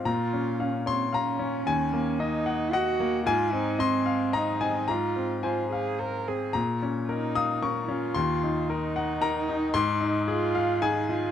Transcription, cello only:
\new Staff \with { instrumentName = "Cello" } { \time 3/4 \key bes \minor \tempo 4 = 112 f'4 des'8 c'8 des'4~ | des'4 ees'4 ges'4 | f'8 ees'8 c'4 ees'4 | f'4 f'8 aes'8 bes'8 aes'8 |
r4 ees'4 des'8 f'8~ | f'4 ees'2~ | ees'4 f'4 ees'8 f'8 | }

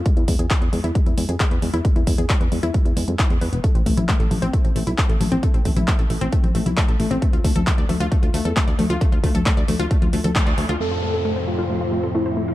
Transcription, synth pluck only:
\new Staff \with { instrumentName = "Synth pluck" } { \time 4/4 \key a \minor \tempo 4 = 134 gis16 e'16 gis16 gis'16 gis16 b'16 gis16 e'16 gis16 e'16 gis16 gis'16 gis16 b'16 gis16 e'16 | gis16 e'16 gis16 gis'16 gis16 b'16 gis16 e'16 gis16 e'16 gis16 gis16 e'16 gis16 b'16 b16 | a16 c'16 a16 e'16 a16 a'16 a16 c'16 a16 c'16 a16 e'16 a16 a'16 a16 c'16 | a16 c'16 a16 e'16 a16 a'16 a16 c'16 a16 c'16 a16 e'16 a16 a'16 a16 c'16 |
a16 f'16 a16 a'16 a16 d''16 a16 f'16 a16 f'16 a16 a'16 a16 d''16 a16 f'16 | a16 f'16 a16 a'16 a16 d''16 a16 f'16 a16 f'16 a16 a'16 a16 d''16 a16 f'16 | a16 f'16 a16 a'16 a16 c''16 a16 f'16 a16 f'16 a16 a'16 a16 c''16 a16 f'16 | }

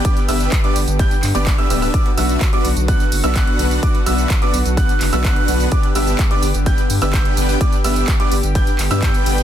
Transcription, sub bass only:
\new Staff \with { instrumentName = "Sub bass" } { \clef bass \time 4/4 \key g \major \tempo 4 = 127 r8 g,,8 r8 g,,16 g,,8 r16 g,16 g,,8 r16 d,,8 | r8 b,,8 r8 b,,16 b,,8 r16 fis,,16 b,,8 r16 b,,8 | r8 b,,8 r8 b,,16 b,,8 r16 fis,,16 b,,8 r16 b,,8 | r8 g,,8 r8 g,,16 g,,8 r16 g,16 g,,8 r16 g,,8 |
r8 g,,8 r8 g,,16 g,,8 r16 g,,16 g,8 r16 g,,8 | }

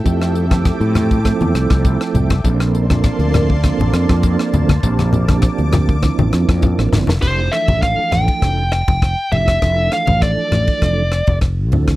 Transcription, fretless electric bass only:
\new Staff \with { instrumentName = "Fretless electric bass" } { \clef bass \time 4/4 \key f \major \tempo 4 = 100 f,4~ f,16 a,4 e,16 c,16 c,8 r16 c,8 | bes,,4~ bes,,16 d,4 a,,16 f,16 f,8 r16 d,8 | bes,,4~ bes,,16 d,4 a,,16 f,16 f,8 a,,16 g,,16 f,,16 | f,,8 r16 a,,8 r16 a,,16 r16 f,,8. f,,8 r16 f,,8 |
f,,8 r16 a,,8 r16 a,,16 r16 f,,8. f,,8. d,8 | }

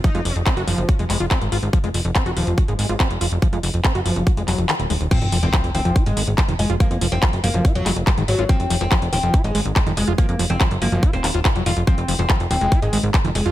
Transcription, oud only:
\new Staff \with { instrumentName = "Oud" } { \time 4/4 \key ees \dorian \tempo 4 = 142 r1 | r1 | r1 | c'8 r16 c'8 r16 c'8 r16 aes16 r4 aes16 r16 |
bes8 r16 c'8 r16 bes8 r16 ges16 r4 ges16 r16 | c'8 r16 c'8 r16 c'8 r16 aes16 r4 aes16 r16 | bes8 r16 c'8 r16 bes8 r16 c'16 r4 f'16 r16 | c'8 r16 c'8 r16 c'8 r16 aes16 r4 aes16 r16 | }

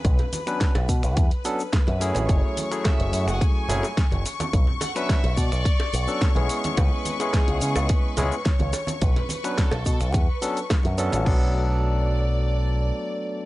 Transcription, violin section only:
\new Staff \with { instrumentName = "Violin section" } { \time 4/4 \key b \dorian \tempo 4 = 107 r2. b'4 | cis''4 e''8. fis''16 gis''4. r8 | r8 fis''16 e''8. d''4. cis''4 | b'4 gis'4 b'4 cis''4 |
b'4 a'4 b'4. r8 | d''1 | }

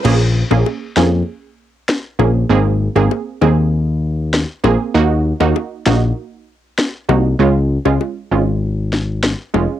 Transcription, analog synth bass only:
\new Staff \with { instrumentName = "Analog synth bass" } { \clef bass \time 4/4 \key bes \minor \tempo 4 = 98 bes,,8. bes,,16 r8 f,8 r4. bes,,8 | aes,,8. aes,,16 r8 ees,4.~ ees,16 r16 bes,,16 r16 | ees,8. ees,16 r8 bes,,8 r4. c,8 | des,8. des,16 r8 aes,,4.~ aes,,16 r16 f,,16 r16 | }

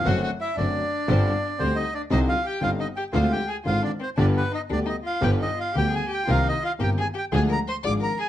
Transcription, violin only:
\new Staff \with { instrumentName = "Violin" } { \time 4/4 \key c \minor \tempo 4 = 116 \tuplet 3/2 { fis'8 fis'8 e'8 } d'2 \tuplet 3/2 { c'8 ees'8 d'8 } | \tuplet 3/2 { ees'8 f'8 g'8 f'8 ees'8 g'8 f'8 g'8 aes'8 f'8 d'8 c'8 } | \tuplet 3/2 { d'8 b8 ees'8 d'8 ees'8 f'8 g'8 ees'8 f'8 g'8 aes'8 g'8 } | \tuplet 3/2 { f'8 ees'8 f'8 g'8 aes'8 g'8 aes'8 bes'8 c''8 d''8 bes'8 aes'8 } | }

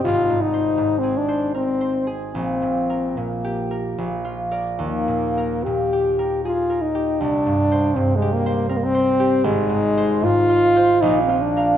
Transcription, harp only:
\new Staff \with { instrumentName = "Harp" } { \time 3/4 \key ees \major \tempo 4 = 77 \tuplet 3/2 { aes,,8 aes,8 c''8 aes,8 aes'8 c''8 bes'8 c''8 aes'8 } | \tuplet 3/2 { bes,,8 bes,8 bes'8 bes,8 g'8 bes'8 bes,,8 f'8 <bes' d''>8 } | \tuplet 3/2 { ees,8 bes,8 bes'8 bes,8 g'8 bes'8 aes'8 bes'8 g'8 } | \tuplet 3/2 { c,8 g,8 c''8 g,8 g'8 c''8 bes'8 c''8 g'8 } |
\tuplet 3/2 { aes,,8 aes,8 c''8 aes,8 f'8 c''8 bes,,8 f'8 <bes' f''>8 } | }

